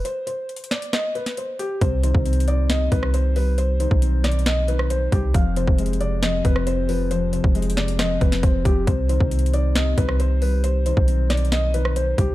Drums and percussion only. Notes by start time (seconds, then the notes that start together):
0.05 closed hi-hat
0.27 closed hi-hat
0.49 closed hi-hat
0.56 closed hi-hat
0.64 closed hi-hat
0.71 snare, closed hi-hat
0.82 closed hi-hat
0.93 cross-stick, snare, closed hi-hat
1.15 closed hi-hat
1.26 snare, closed hi-hat
1.37 closed hi-hat
1.59 closed hi-hat
1.81 kick, closed hi-hat
2.04 closed hi-hat
2.15 kick
2.26 closed hi-hat
2.33 closed hi-hat
2.40 closed hi-hat
2.48 closed hi-hat
2.70 snare, closed hi-hat
2.92 kick, closed hi-hat
3.03 cross-stick
3.14 closed hi-hat
3.36 open hi-hat
3.58 closed hi-hat
3.80 closed hi-hat
3.91 kick
4.02 closed hi-hat
4.24 snare, closed hi-hat
4.31 closed hi-hat
4.39 closed hi-hat
4.46 snare, closed hi-hat
4.68 closed hi-hat
4.79 cross-stick
4.90 closed hi-hat
5.12 kick, closed hi-hat
5.34 kick, closed hi-hat
5.56 closed hi-hat
5.67 kick
5.78 closed hi-hat
5.86 closed hi-hat
5.93 closed hi-hat
6.01 closed hi-hat
6.23 snare, closed hi-hat
6.45 kick, closed hi-hat
6.56 cross-stick
6.67 closed hi-hat
6.89 open hi-hat
7.11 closed hi-hat
7.33 closed hi-hat
7.44 kick
7.55 closed hi-hat
7.62 closed hi-hat
7.70 closed hi-hat
7.77 snare, closed hi-hat
7.88 closed hi-hat
7.99 cross-stick, snare, closed hi-hat
8.21 kick, closed hi-hat
8.32 snare, closed hi-hat
8.43 kick, closed hi-hat
8.65 kick, closed hi-hat
8.87 kick, closed hi-hat
9.09 closed hi-hat
9.20 kick
9.31 closed hi-hat
9.39 closed hi-hat
9.46 closed hi-hat
9.54 closed hi-hat
9.76 snare, closed hi-hat
9.98 kick, closed hi-hat
10.09 cross-stick
10.20 closed hi-hat
10.42 open hi-hat
10.64 closed hi-hat
10.86 closed hi-hat
10.97 kick
11.08 closed hi-hat
11.30 snare, closed hi-hat
11.37 closed hi-hat
11.45 closed hi-hat
11.52 snare, closed hi-hat
11.74 closed hi-hat
11.85 cross-stick
11.96 closed hi-hat
12.18 kick, closed hi-hat